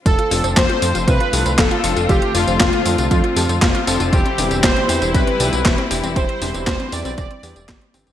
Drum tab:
HH |xxoxxxoxxxoxxxox|xxoxxxoxxxoxxxox|xxoxxxoxxxoxxxox|xxoxxxoxxxoxxxox|
TB |x-xxx-xxx-xxx-xx|x-xxx-xxx-xxx-xx|x-xxx-xxx-xxx-xx|x-xxx-xxx-xxx-xx|
CP |----x-------x---|----x-------x---|----x-------x---|----x-------x---|
SD |----o-------o---|----o-------o---|----o-------o---|----o-------o---|
BD |o---o---o---o---|o---o---o---o---|o---o---o---o---|o---o---o---o---|